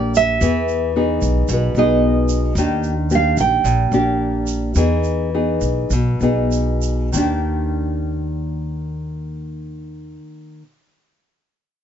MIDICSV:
0, 0, Header, 1, 5, 480
1, 0, Start_track
1, 0, Tempo, 537634
1, 372, Time_signature, 4, 2, 24, 8
1, 3253, Tempo, 566038
1, 5173, Tempo, 612245
1, 6133, Tempo, 631579
1, 9706, End_track
2, 0, Start_track
2, 0, Title_t, "Nylon-string guitar"
2, 0, Program_c, 0, 24
2, 0, Note_on_c, 0, 74, 60
2, 142, Note_off_c, 0, 74, 0
2, 150, Note_on_c, 0, 76, 81
2, 824, Note_off_c, 0, 76, 0
2, 1367, Note_on_c, 0, 71, 51
2, 1581, Note_off_c, 0, 71, 0
2, 1595, Note_on_c, 0, 75, 73
2, 2265, Note_off_c, 0, 75, 0
2, 2813, Note_on_c, 0, 77, 73
2, 3025, Note_off_c, 0, 77, 0
2, 3040, Note_on_c, 0, 79, 75
2, 3699, Note_off_c, 0, 79, 0
2, 9706, End_track
3, 0, Start_track
3, 0, Title_t, "Nylon-string guitar"
3, 0, Program_c, 1, 24
3, 0, Note_on_c, 1, 46, 51
3, 0, Note_on_c, 1, 58, 58
3, 0, Note_on_c, 1, 62, 58
3, 0, Note_on_c, 1, 67, 60
3, 335, Note_off_c, 1, 58, 0
3, 338, Note_off_c, 1, 62, 0
3, 339, Note_off_c, 1, 67, 0
3, 347, Note_off_c, 1, 46, 0
3, 372, Note_on_c, 1, 52, 43
3, 374, Note_on_c, 1, 59, 49
3, 381, Note_on_c, 1, 68, 53
3, 812, Note_off_c, 1, 59, 0
3, 817, Note_off_c, 1, 68, 0
3, 855, Note_on_c, 1, 59, 46
3, 860, Note_on_c, 1, 63, 48
3, 863, Note_on_c, 1, 68, 49
3, 1306, Note_off_c, 1, 52, 0
3, 1332, Note_on_c, 1, 47, 48
3, 1533, Note_off_c, 1, 59, 0
3, 1535, Note_off_c, 1, 63, 0
3, 1537, Note_off_c, 1, 68, 0
3, 1582, Note_on_c, 1, 59, 57
3, 1585, Note_on_c, 1, 63, 60
3, 1589, Note_on_c, 1, 68, 65
3, 2255, Note_off_c, 1, 59, 0
3, 2257, Note_off_c, 1, 63, 0
3, 2259, Note_off_c, 1, 68, 0
3, 2264, Note_off_c, 1, 47, 0
3, 2302, Note_on_c, 1, 51, 49
3, 2306, Note_on_c, 1, 62, 47
3, 2309, Note_on_c, 1, 58, 46
3, 2311, Note_on_c, 1, 67, 46
3, 2606, Note_off_c, 1, 58, 0
3, 2606, Note_off_c, 1, 62, 0
3, 2607, Note_off_c, 1, 67, 0
3, 2774, Note_on_c, 1, 58, 50
3, 2775, Note_on_c, 1, 62, 43
3, 2780, Note_on_c, 1, 67, 51
3, 3236, Note_off_c, 1, 51, 0
3, 3257, Note_on_c, 1, 46, 49
3, 3450, Note_off_c, 1, 62, 0
3, 3451, Note_off_c, 1, 58, 0
3, 3453, Note_off_c, 1, 67, 0
3, 3494, Note_on_c, 1, 58, 56
3, 3502, Note_on_c, 1, 62, 57
3, 3506, Note_on_c, 1, 67, 64
3, 4159, Note_off_c, 1, 58, 0
3, 4163, Note_off_c, 1, 62, 0
3, 4165, Note_off_c, 1, 67, 0
3, 4171, Note_off_c, 1, 46, 0
3, 4202, Note_on_c, 1, 52, 44
3, 4208, Note_on_c, 1, 59, 43
3, 4208, Note_on_c, 1, 63, 41
3, 4212, Note_on_c, 1, 68, 49
3, 4644, Note_off_c, 1, 63, 0
3, 4645, Note_off_c, 1, 59, 0
3, 4648, Note_off_c, 1, 68, 0
3, 4695, Note_on_c, 1, 59, 42
3, 4695, Note_on_c, 1, 63, 45
3, 4698, Note_on_c, 1, 68, 48
3, 5154, Note_off_c, 1, 52, 0
3, 5178, Note_off_c, 1, 63, 0
3, 5179, Note_off_c, 1, 59, 0
3, 5180, Note_off_c, 1, 68, 0
3, 5185, Note_on_c, 1, 47, 47
3, 5418, Note_on_c, 1, 59, 56
3, 5422, Note_on_c, 1, 63, 50
3, 5425, Note_on_c, 1, 68, 53
3, 6098, Note_off_c, 1, 59, 0
3, 6101, Note_off_c, 1, 63, 0
3, 6101, Note_off_c, 1, 68, 0
3, 6114, Note_off_c, 1, 47, 0
3, 6125, Note_on_c, 1, 51, 45
3, 6140, Note_on_c, 1, 58, 53
3, 6157, Note_on_c, 1, 62, 55
3, 6168, Note_on_c, 1, 67, 56
3, 8786, Note_off_c, 1, 51, 0
3, 8800, Note_off_c, 1, 58, 0
3, 8817, Note_off_c, 1, 62, 0
3, 8828, Note_off_c, 1, 67, 0
3, 9706, End_track
4, 0, Start_track
4, 0, Title_t, "Upright bass"
4, 0, Program_c, 2, 32
4, 0, Note_on_c, 2, 34, 72
4, 337, Note_off_c, 2, 34, 0
4, 368, Note_on_c, 2, 40, 85
4, 1052, Note_off_c, 2, 40, 0
4, 1089, Note_on_c, 2, 35, 72
4, 1312, Note_off_c, 2, 35, 0
4, 1327, Note_on_c, 2, 35, 74
4, 1551, Note_off_c, 2, 35, 0
4, 1560, Note_on_c, 2, 35, 69
4, 2247, Note_off_c, 2, 35, 0
4, 2279, Note_on_c, 2, 39, 85
4, 2970, Note_off_c, 2, 39, 0
4, 3012, Note_on_c, 2, 34, 72
4, 3237, Note_off_c, 2, 34, 0
4, 3253, Note_on_c, 2, 34, 71
4, 3468, Note_off_c, 2, 34, 0
4, 3484, Note_on_c, 2, 34, 72
4, 4159, Note_off_c, 2, 34, 0
4, 4197, Note_on_c, 2, 40, 87
4, 4892, Note_off_c, 2, 40, 0
4, 4924, Note_on_c, 2, 35, 71
4, 5156, Note_off_c, 2, 35, 0
4, 5169, Note_on_c, 2, 35, 70
4, 5389, Note_off_c, 2, 35, 0
4, 5408, Note_on_c, 2, 35, 71
4, 6101, Note_off_c, 2, 35, 0
4, 6138, Note_on_c, 2, 39, 72
4, 8433, Note_off_c, 2, 39, 0
4, 9706, End_track
5, 0, Start_track
5, 0, Title_t, "Drums"
5, 134, Note_on_c, 9, 82, 57
5, 223, Note_off_c, 9, 82, 0
5, 370, Note_on_c, 9, 82, 56
5, 459, Note_off_c, 9, 82, 0
5, 611, Note_on_c, 9, 82, 23
5, 700, Note_off_c, 9, 82, 0
5, 1087, Note_on_c, 9, 82, 53
5, 1176, Note_off_c, 9, 82, 0
5, 1324, Note_on_c, 9, 82, 57
5, 1414, Note_off_c, 9, 82, 0
5, 1566, Note_on_c, 9, 82, 21
5, 1656, Note_off_c, 9, 82, 0
5, 2043, Note_on_c, 9, 82, 57
5, 2133, Note_off_c, 9, 82, 0
5, 2287, Note_on_c, 9, 82, 55
5, 2376, Note_off_c, 9, 82, 0
5, 2530, Note_on_c, 9, 82, 22
5, 2619, Note_off_c, 9, 82, 0
5, 2771, Note_on_c, 9, 82, 47
5, 2860, Note_off_c, 9, 82, 0
5, 3013, Note_on_c, 9, 82, 53
5, 3102, Note_off_c, 9, 82, 0
5, 3259, Note_on_c, 9, 82, 52
5, 3343, Note_off_c, 9, 82, 0
5, 3491, Note_on_c, 9, 82, 22
5, 3576, Note_off_c, 9, 82, 0
5, 3954, Note_on_c, 9, 82, 54
5, 4038, Note_off_c, 9, 82, 0
5, 4191, Note_on_c, 9, 82, 56
5, 4276, Note_off_c, 9, 82, 0
5, 4434, Note_on_c, 9, 82, 21
5, 4519, Note_off_c, 9, 82, 0
5, 4923, Note_on_c, 9, 82, 52
5, 5008, Note_off_c, 9, 82, 0
5, 5172, Note_on_c, 9, 82, 50
5, 5250, Note_off_c, 9, 82, 0
5, 5407, Note_on_c, 9, 82, 19
5, 5486, Note_off_c, 9, 82, 0
5, 5650, Note_on_c, 9, 82, 46
5, 5728, Note_off_c, 9, 82, 0
5, 5887, Note_on_c, 9, 82, 56
5, 5965, Note_off_c, 9, 82, 0
5, 6134, Note_on_c, 9, 82, 74
5, 6210, Note_off_c, 9, 82, 0
5, 9706, End_track
0, 0, End_of_file